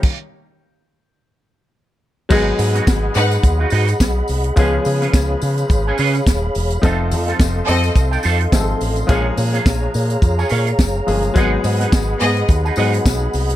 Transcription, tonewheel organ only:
0, 0, Header, 1, 2, 480
1, 0, Start_track
1, 0, Tempo, 566038
1, 29, Time_signature, 4, 2, 24, 8
1, 11497, End_track
2, 0, Start_track
2, 0, Title_t, "Tonewheel organ"
2, 0, Program_c, 0, 16
2, 1953, Note_on_c, 0, 68, 67
2, 1957, Note_on_c, 0, 78, 65
2, 1957, Note_on_c, 0, 83, 73
2, 1958, Note_on_c, 0, 75, 59
2, 3857, Note_off_c, 0, 75, 0
2, 3857, Note_off_c, 0, 78, 0
2, 3857, Note_off_c, 0, 83, 0
2, 3876, Note_on_c, 0, 77, 61
2, 3878, Note_on_c, 0, 73, 62
2, 3881, Note_on_c, 0, 83, 78
2, 5758, Note_off_c, 0, 68, 0
2, 5776, Note_off_c, 0, 73, 0
2, 5777, Note_off_c, 0, 83, 0
2, 5784, Note_on_c, 0, 84, 70
2, 5788, Note_on_c, 0, 69, 74
2, 5788, Note_on_c, 0, 75, 67
2, 7688, Note_off_c, 0, 84, 0
2, 7690, Note_off_c, 0, 69, 0
2, 7690, Note_off_c, 0, 75, 0
2, 7718, Note_on_c, 0, 82, 81
2, 7720, Note_on_c, 0, 73, 67
2, 7723, Note_on_c, 0, 68, 70
2, 9598, Note_off_c, 0, 77, 0
2, 9616, Note_off_c, 0, 82, 0
2, 9617, Note_off_c, 0, 73, 0
2, 9640, Note_on_c, 0, 75, 71
2, 9643, Note_on_c, 0, 78, 59
2, 9643, Note_on_c, 0, 83, 77
2, 11497, Note_off_c, 0, 68, 0
2, 11497, Note_off_c, 0, 75, 0
2, 11497, Note_off_c, 0, 78, 0
2, 11497, Note_off_c, 0, 83, 0
2, 11497, End_track
0, 0, End_of_file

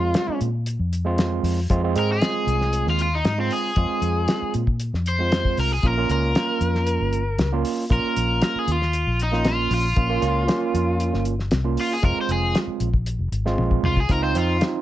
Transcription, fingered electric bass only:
0, 0, Header, 1, 3, 480
1, 0, Start_track
1, 0, Key_signature, -4, "minor"
1, 0, Tempo, 516351
1, 1579, Time_signature, 4, 2, 24, 8
1, 13773, End_track
2, 0, Start_track
2, 0, Title_t, "Fingered electric bass"
2, 0, Program_c, 0, 33
2, 0, Note_on_c, 0, 41, 81
2, 117, Note_off_c, 0, 41, 0
2, 378, Note_on_c, 0, 46, 90
2, 715, Note_off_c, 0, 46, 0
2, 736, Note_on_c, 0, 41, 83
2, 1299, Note_off_c, 0, 41, 0
2, 1330, Note_on_c, 0, 41, 92
2, 1558, Note_off_c, 0, 41, 0
2, 1579, Note_on_c, 0, 41, 103
2, 1803, Note_off_c, 0, 41, 0
2, 1814, Note_on_c, 0, 44, 92
2, 2040, Note_off_c, 0, 44, 0
2, 2292, Note_on_c, 0, 36, 84
2, 2634, Note_off_c, 0, 36, 0
2, 2660, Note_on_c, 0, 39, 82
2, 2994, Note_off_c, 0, 39, 0
2, 3015, Note_on_c, 0, 44, 80
2, 3242, Note_off_c, 0, 44, 0
2, 3500, Note_on_c, 0, 41, 102
2, 3615, Note_off_c, 0, 41, 0
2, 3730, Note_on_c, 0, 41, 86
2, 3959, Note_off_c, 0, 41, 0
2, 4224, Note_on_c, 0, 46, 87
2, 4561, Note_off_c, 0, 46, 0
2, 4587, Note_on_c, 0, 41, 76
2, 5147, Note_off_c, 0, 41, 0
2, 5182, Note_on_c, 0, 36, 88
2, 5407, Note_off_c, 0, 36, 0
2, 5420, Note_on_c, 0, 34, 95
2, 5645, Note_off_c, 0, 34, 0
2, 5662, Note_on_c, 0, 37, 93
2, 5887, Note_off_c, 0, 37, 0
2, 6139, Note_on_c, 0, 41, 94
2, 6479, Note_off_c, 0, 41, 0
2, 6506, Note_on_c, 0, 31, 83
2, 6839, Note_off_c, 0, 31, 0
2, 6861, Note_on_c, 0, 37, 89
2, 7086, Note_off_c, 0, 37, 0
2, 7348, Note_on_c, 0, 34, 112
2, 7461, Note_off_c, 0, 34, 0
2, 7589, Note_on_c, 0, 34, 86
2, 7810, Note_off_c, 0, 34, 0
2, 8063, Note_on_c, 0, 39, 89
2, 8401, Note_off_c, 0, 39, 0
2, 8427, Note_on_c, 0, 34, 84
2, 8988, Note_off_c, 0, 34, 0
2, 9021, Note_on_c, 0, 34, 105
2, 9246, Note_off_c, 0, 34, 0
2, 9265, Note_on_c, 0, 34, 99
2, 9489, Note_off_c, 0, 34, 0
2, 9501, Note_on_c, 0, 37, 92
2, 9726, Note_off_c, 0, 37, 0
2, 9983, Note_on_c, 0, 41, 95
2, 10321, Note_off_c, 0, 41, 0
2, 10348, Note_on_c, 0, 31, 86
2, 10680, Note_off_c, 0, 31, 0
2, 10708, Note_on_c, 0, 36, 88
2, 10929, Note_off_c, 0, 36, 0
2, 11183, Note_on_c, 0, 29, 105
2, 11298, Note_off_c, 0, 29, 0
2, 11418, Note_on_c, 0, 29, 82
2, 11644, Note_off_c, 0, 29, 0
2, 11898, Note_on_c, 0, 34, 86
2, 12237, Note_off_c, 0, 34, 0
2, 12259, Note_on_c, 0, 29, 82
2, 12371, Note_off_c, 0, 29, 0
2, 12377, Note_on_c, 0, 32, 81
2, 12596, Note_off_c, 0, 32, 0
2, 12622, Note_on_c, 0, 34, 83
2, 12838, Note_off_c, 0, 34, 0
2, 12855, Note_on_c, 0, 36, 88
2, 13074, Note_off_c, 0, 36, 0
2, 13100, Note_on_c, 0, 37, 88
2, 13324, Note_off_c, 0, 37, 0
2, 13339, Note_on_c, 0, 41, 92
2, 13563, Note_off_c, 0, 41, 0
2, 13773, End_track
3, 0, Start_track
3, 0, Title_t, "Muted fingered electric bass strokes"
3, 260, Note_on_c, 9, 29, 34
3, 353, Note_off_c, 9, 29, 0
3, 4108, Note_on_c, 9, 29, 34
3, 4201, Note_off_c, 9, 29, 0
3, 7471, Note_on_c, 9, 29, 40
3, 7564, Note_off_c, 9, 29, 0
3, 7949, Note_on_c, 9, 29, 36
3, 8042, Note_off_c, 9, 29, 0
3, 11777, Note_on_c, 9, 29, 39
3, 11870, Note_off_c, 9, 29, 0
3, 13773, End_track
0, 0, End_of_file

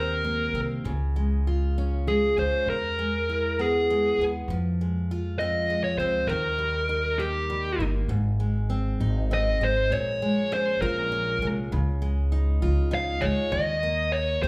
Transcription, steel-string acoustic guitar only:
0, 0, Header, 1, 2, 480
1, 0, Start_track
1, 0, Key_signature, -4, "major"
1, 0, Tempo, 604230
1, 678, Time_signature, 6, 3, 24, 8
1, 11502, End_track
2, 0, Start_track
2, 0, Title_t, "Steel-string acoustic guitar"
2, 0, Program_c, 0, 25
2, 0, Note_on_c, 0, 51, 64
2, 0, Note_on_c, 0, 58, 45
2, 0, Note_on_c, 0, 60, 48
2, 0, Note_on_c, 0, 67, 50
2, 184, Note_off_c, 0, 58, 0
2, 194, Note_on_c, 0, 58, 45
2, 425, Note_off_c, 0, 60, 0
2, 435, Note_on_c, 0, 60, 48
2, 674, Note_off_c, 0, 51, 0
2, 677, Note_on_c, 0, 49, 58
2, 726, Note_off_c, 0, 60, 0
2, 727, Note_off_c, 0, 58, 0
2, 729, Note_off_c, 0, 67, 0
2, 923, Note_on_c, 0, 56, 45
2, 1170, Note_on_c, 0, 65, 51
2, 1413, Note_on_c, 0, 61, 47
2, 1645, Note_off_c, 0, 56, 0
2, 1648, Note_on_c, 0, 56, 49
2, 1880, Note_off_c, 0, 61, 0
2, 1889, Note_on_c, 0, 61, 49
2, 2120, Note_off_c, 0, 49, 0
2, 2173, Note_off_c, 0, 65, 0
2, 2174, Note_off_c, 0, 61, 0
2, 2370, Note_off_c, 0, 56, 0
2, 2373, Note_on_c, 0, 56, 47
2, 2616, Note_on_c, 0, 64, 47
2, 2854, Note_on_c, 0, 59, 50
2, 3098, Note_off_c, 0, 56, 0
2, 3101, Note_on_c, 0, 56, 51
2, 3326, Note_off_c, 0, 59, 0
2, 3347, Note_on_c, 0, 59, 53
2, 3577, Note_on_c, 0, 53, 62
2, 3612, Note_off_c, 0, 64, 0
2, 3615, Note_off_c, 0, 56, 0
2, 3619, Note_off_c, 0, 59, 0
2, 3822, Note_on_c, 0, 56, 46
2, 4060, Note_on_c, 0, 65, 55
2, 4293, Note_on_c, 0, 60, 52
2, 4519, Note_off_c, 0, 56, 0
2, 4528, Note_on_c, 0, 56, 50
2, 4755, Note_off_c, 0, 60, 0
2, 4764, Note_on_c, 0, 60, 50
2, 4997, Note_off_c, 0, 53, 0
2, 5000, Note_on_c, 0, 51, 66
2, 5043, Note_off_c, 0, 60, 0
2, 5044, Note_off_c, 0, 56, 0
2, 5049, Note_off_c, 0, 65, 0
2, 5231, Note_on_c, 0, 55, 48
2, 5474, Note_on_c, 0, 63, 49
2, 5716, Note_on_c, 0, 58, 52
2, 5946, Note_off_c, 0, 55, 0
2, 5955, Note_on_c, 0, 55, 49
2, 6189, Note_off_c, 0, 58, 0
2, 6198, Note_on_c, 0, 58, 45
2, 6427, Note_on_c, 0, 44, 60
2, 6437, Note_off_c, 0, 51, 0
2, 6483, Note_off_c, 0, 55, 0
2, 6483, Note_off_c, 0, 63, 0
2, 6484, Note_off_c, 0, 58, 0
2, 6671, Note_on_c, 0, 56, 45
2, 6909, Note_on_c, 0, 60, 51
2, 7154, Note_on_c, 0, 63, 58
2, 7386, Note_off_c, 0, 60, 0
2, 7396, Note_on_c, 0, 60, 57
2, 7632, Note_off_c, 0, 56, 0
2, 7635, Note_on_c, 0, 56, 50
2, 7875, Note_off_c, 0, 44, 0
2, 7880, Note_on_c, 0, 46, 62
2, 7925, Note_off_c, 0, 60, 0
2, 7925, Note_off_c, 0, 63, 0
2, 8117, Note_off_c, 0, 56, 0
2, 8120, Note_on_c, 0, 56, 52
2, 8356, Note_on_c, 0, 61, 55
2, 8597, Note_on_c, 0, 65, 60
2, 8828, Note_off_c, 0, 61, 0
2, 8832, Note_on_c, 0, 61, 53
2, 9069, Note_off_c, 0, 56, 0
2, 9072, Note_on_c, 0, 56, 57
2, 9308, Note_off_c, 0, 46, 0
2, 9311, Note_on_c, 0, 49, 71
2, 9360, Note_off_c, 0, 61, 0
2, 9361, Note_off_c, 0, 56, 0
2, 9363, Note_off_c, 0, 65, 0
2, 9547, Note_on_c, 0, 56, 51
2, 9786, Note_on_c, 0, 63, 49
2, 10026, Note_on_c, 0, 65, 65
2, 10253, Note_off_c, 0, 63, 0
2, 10256, Note_on_c, 0, 63, 58
2, 10488, Note_off_c, 0, 56, 0
2, 10498, Note_on_c, 0, 56, 58
2, 10740, Note_on_c, 0, 51, 65
2, 10747, Note_off_c, 0, 49, 0
2, 10789, Note_off_c, 0, 63, 0
2, 10790, Note_off_c, 0, 56, 0
2, 10794, Note_off_c, 0, 65, 0
2, 10986, Note_on_c, 0, 58, 51
2, 11467, Note_on_c, 0, 67, 62
2, 11502, Note_off_c, 0, 51, 0
2, 11502, Note_off_c, 0, 58, 0
2, 11502, Note_off_c, 0, 67, 0
2, 11502, End_track
0, 0, End_of_file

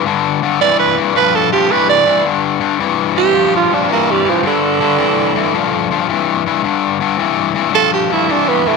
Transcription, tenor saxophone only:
0, 0, Header, 1, 2, 480
1, 0, Start_track
1, 0, Tempo, 548446
1, 50, Time_signature, 4, 2, 24, 8
1, 7675, End_track
2, 0, Start_track
2, 0, Title_t, "Tenor saxophone"
2, 0, Program_c, 0, 66
2, 535, Note_on_c, 0, 74, 108
2, 687, Note_off_c, 0, 74, 0
2, 695, Note_on_c, 0, 71, 98
2, 847, Note_off_c, 0, 71, 0
2, 1021, Note_on_c, 0, 71, 99
2, 1185, Note_on_c, 0, 69, 93
2, 1199, Note_off_c, 0, 71, 0
2, 1331, Note_off_c, 0, 69, 0
2, 1336, Note_on_c, 0, 67, 88
2, 1498, Note_on_c, 0, 71, 92
2, 1511, Note_off_c, 0, 67, 0
2, 1648, Note_off_c, 0, 71, 0
2, 1659, Note_on_c, 0, 74, 109
2, 1964, Note_off_c, 0, 74, 0
2, 2780, Note_on_c, 0, 67, 105
2, 3084, Note_off_c, 0, 67, 0
2, 3118, Note_on_c, 0, 65, 77
2, 3276, Note_on_c, 0, 62, 82
2, 3289, Note_off_c, 0, 65, 0
2, 3418, Note_off_c, 0, 62, 0
2, 3436, Note_on_c, 0, 58, 82
2, 3599, Note_on_c, 0, 55, 88
2, 3612, Note_off_c, 0, 58, 0
2, 3754, Note_on_c, 0, 53, 90
2, 3767, Note_off_c, 0, 55, 0
2, 3897, Note_off_c, 0, 53, 0
2, 3909, Note_on_c, 0, 50, 99
2, 5304, Note_off_c, 0, 50, 0
2, 6784, Note_on_c, 0, 69, 117
2, 6932, Note_off_c, 0, 69, 0
2, 6945, Note_on_c, 0, 67, 84
2, 7093, Note_off_c, 0, 67, 0
2, 7111, Note_on_c, 0, 64, 89
2, 7278, Note_on_c, 0, 62, 94
2, 7291, Note_off_c, 0, 64, 0
2, 7426, Note_on_c, 0, 59, 97
2, 7439, Note_off_c, 0, 62, 0
2, 7597, Note_on_c, 0, 57, 93
2, 7610, Note_off_c, 0, 59, 0
2, 7675, Note_off_c, 0, 57, 0
2, 7675, End_track
0, 0, End_of_file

